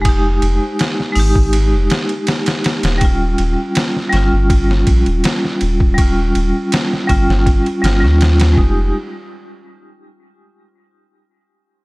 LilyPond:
<<
  \new Staff \with { instrumentName = "Vibraphone" } { \time 4/4 \key ees \mixolydian \tempo 4 = 81 <aes ees' g'>4. <aes ees' g'>2~ <aes ees' g'>8 | <g des' f'>4. <g des' f'>2~ <g des' f'>8 | <g des' f'>4. <g des' f'>4 <g des' f'>16 <g des' f'>8. <aes ees' g'>8 | r1 | }
  \new Staff \with { instrumentName = "Sub bass" } { \clef bass \time 4/4 \key ees \mixolydian f,,8 f,,16 r8. aes,,16 aes,,8 f,,16 r4 r16 ees,,16~ | ees,,8 ees,,16 r8. g,,16 g,,8. bes,,16 ees,,16 r8 ees,,8~ | ees,,8 ees,,16 r8. g,,16 g,,8 r16 g,,16 ees,8. f,,8 | r1 | }
  \new DrumStaff \with { instrumentName = "Drums" } \drummode { \time 4/4 <bd cymr>8 cymr8 <cymr sn>16 sn16 hho16 bd16 cymr8 <cymr sn>16 cymr16 <cymr sn>16 <cymr sn>16 <cymr sn>16 <cymr sn>16 | <bd cymr>8 cymr8 <cymr sn>16 sn16 <cymr sn>8 <bd cymr>16 sn16 <bd cymr>16 cymr16 <cymr sn>16 sn16 cymr16 bd16 | <bd cymr>8 cymr8 <cymr sn>16 sn16 <bd cymr>16 sn16 <bd cymr>16 cymr16 <cymr sn>16 sn16 <cymr sn>16 <cymr sn>16 bd8 | r4 r4 r4 r4 | }
>>